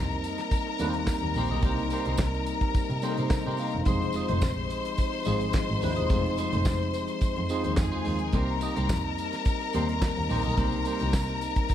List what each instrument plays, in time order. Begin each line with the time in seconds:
Already playing: double bass F2, french horn section C3 G3 A#3 D#4, tine electric piano G3 A#3 C4 D#4 A#4, string section A#4 A#5
0.10 muted clean electric guitar stroke, closed hi-hat
0.24 closed hi-hat, tambourine
0.38 muted clean electric guitar stroke, snare, closed hi-hat
0.51 kick, closed hi-hat, tambourine
0.67 muted clean electric guitar stroke
0.79 double bass D#2, tine electric piano G3 A#3 C4 D#4 A#4, clean electric guitar A#3 D#4 G4 C5, closed hi-hat, tambourine
0.94 muted clean electric guitar stroke, closed hi-hat
1.07 muted clean electric guitar stroke, kick, snare, clap, tambourine
1.22 double bass D#2, muted clean electric guitar stroke, closed hi-hat
1.34 double bass A#1, clean electric guitar A#3 D#4 G4, open hi-hat, tambourine
1.38 clean electric guitar C5
1.48 double bass B1, clean electric guitar D#4 G4 D#5, closed hi-hat
1.52 clean electric guitar A#3
1.62 double bass C2, tine electric piano G3 A#3 C4 D#4 A#4, clean electric guitar A#3 D#4 G4 C5, kick, closed hi-hat
1.78 closed hi-hat
1.90 clean electric guitar A#3 D#4 G4 C5, closed hi-hat, tambourine
2.05 double bass C2, clean electric guitar A#3 D#4 G4 C5, closed hi-hat
2.17 double bass C2, kick, snare, clap, tambourine
2.34 muted clean electric guitar stroke, closed hi-hat
2.46 closed hi-hat, tambourine
2.61 muted clean electric guitar stroke, kick, closed hi-hat
2.74 muted clean electric guitar stroke, kick, closed hi-hat, tambourine
2.90 double bass C3, muted clean electric guitar stroke, closed hi-hat
3.02 tine electric piano G3 A#3 C4 D#4 A4 C5, clean electric guitar A#3 D#4 G4 C5, closed hi-hat, tambourine
3.10 tine electric piano A#4
3.17 double bass C3, clean electric guitar A#3 D#4 G4 C5, closed hi-hat
3.30 tine electric piano D#5, muted clean electric guitar stroke, kick, snare, clap, tambourine
3.46 double bass C3, clean electric guitar A#3 D#4 G4 C5
3.57 clean electric guitar A#3 D#4 G4 C5, tine electric piano F5, open hi-hat, tambourine
3.72 double bass E1, muted clean electric guitar stroke, closed hi-hat
3.85 double bass F1, french horn section F3 G#3, tine electric piano F3 G#3 C4 D#4 G#4, clean electric guitar G#3 D#4 F4 C5, string section C5 C6, kick, closed hi-hat, tambourine
4.02 closed hi-hat
4.13 clean electric guitar G#3 D#4 F4 D#5, closed hi-hat, tambourine
4.29 double bass F1, clean electric guitar G#3 D#4 F4 C5, closed hi-hat
4.42 double bass A#1, kick, snare, clap, tambourine
4.58 muted clean electric guitar stroke
4.70 closed hi-hat, tambourine
4.85 muted clean electric guitar stroke, closed hi-hat
4.98 kick, closed hi-hat, tambourine
5.13 muted clean electric guitar stroke, closed hi-hat
5.25 double bass G#1, tine electric piano F3 G#3 C4 D#4 G#4, clean electric guitar G#3 D#4 F4 C5, closed hi-hat, tambourine
5.41 muted clean electric guitar stroke, closed hi-hat
5.53 muted clean electric guitar stroke, kick, snare, clap, tambourine
5.69 double bass G#1, muted clean electric guitar stroke
5.82 double bass D#2, clean electric guitar G#3 D#4 F4 C5, open hi-hat, tambourine
5.96 double bass E1, clean electric guitar G#3 D#4 F4 D#5, closed hi-hat
6.09 double bass F1, tine electric piano F3 G#3 C4 D#4 G#4, clean electric guitar G#3 D#4 F4 C5, kick, closed hi-hat, tambourine
6.26 closed hi-hat
6.37 clean electric guitar G#3 D#4 F4 C5, closed hi-hat, tambourine
6.53 double bass F1, clean electric guitar G#3 D#4 F4 C5, closed hi-hat
6.65 double bass F1, kick, snare, clap, tambourine
6.81 muted clean electric guitar stroke, closed hi-hat
6.93 closed hi-hat, tambourine
7.08 muted clean electric guitar stroke, closed hi-hat
7.21 double bass F2, muted clean electric guitar stroke, kick, closed hi-hat, tambourine
7.36 double bass F2, muted clean electric guitar stroke, closed hi-hat
7.49 tine electric piano F3 G#3 C4 D#4 G#4, clean electric guitar G#3 D#4 F4 C5, closed hi-hat, tambourine
7.64 double bass D#2, clean electric guitar G#3 D#4 F4 C5, closed hi-hat
7.77 double bass F2, string section G#4 G#5, kick, snare, clap, tambourine
7.92 clean electric guitar G#3 D#4 F4 C5
8.04 double bass D#2, clean electric guitar G#3 D#4 F4 C5, open hi-hat
8.19 muted clean electric guitar stroke, closed hi-hat
8.33 double bass C2, french horn section C3 G3 A#3, tine electric piano G3 A#3 C4 D4 A#4, clean electric guitar A#3 D#4 G4 C5, string section A#4 A#5, kick, closed hi-hat
8.42 tine electric piano D#4
8.61 clean electric guitar A#3 D#4 G4 D#5, closed hi-hat, tambourine
8.76 double bass C2, clean electric guitar A#3 D#4 G4 C5, closed hi-hat
8.89 double bass F2, kick, snare, clap, tambourine
9.05 muted clean electric guitar stroke
9.18 closed hi-hat, tambourine
9.32 muted clean electric guitar stroke, snare, closed hi-hat
9.45 kick, closed hi-hat, tambourine
9.60 muted clean electric guitar stroke, closed hi-hat
9.73 double bass D#2, tine electric piano G3 A#3 C4 D#4 A#4, clean electric guitar A#3 D#4 G4 C5, closed hi-hat, tambourine
9.89 muted clean electric guitar stroke, closed hi-hat
10.02 muted clean electric guitar stroke, kick, snare, clap, tambourine
10.17 double bass D#2, muted clean electric guitar stroke, closed hi-hat
10.30 double bass A#1, clean electric guitar A#3 D#4 G4 C5, open hi-hat
10.44 double bass B1, clean electric guitar A#3 D#4 G4 D#5, closed hi-hat
10.57 double bass C2, tine electric piano G3 A#3 C4 D#4 A#4, clean electric guitar A#3 D#4 G4 C5, kick, closed hi-hat
10.73 closed hi-hat
10.85 clean electric guitar A#3 D#4 G4 C5, closed hi-hat, tambourine
10.99 double bass C2, clean electric guitar A#3 D#4 G4 C5, closed hi-hat
11.13 double bass C2, muted clean electric guitar stroke, kick, snare, clap, tambourine
11.29 muted clean electric guitar stroke, closed hi-hat
11.41 closed hi-hat, tambourine
11.56 muted clean electric guitar stroke, kick, closed hi-hat
11.69 double bass C3, muted clean electric guitar stroke, kick, closed hi-hat, tambourine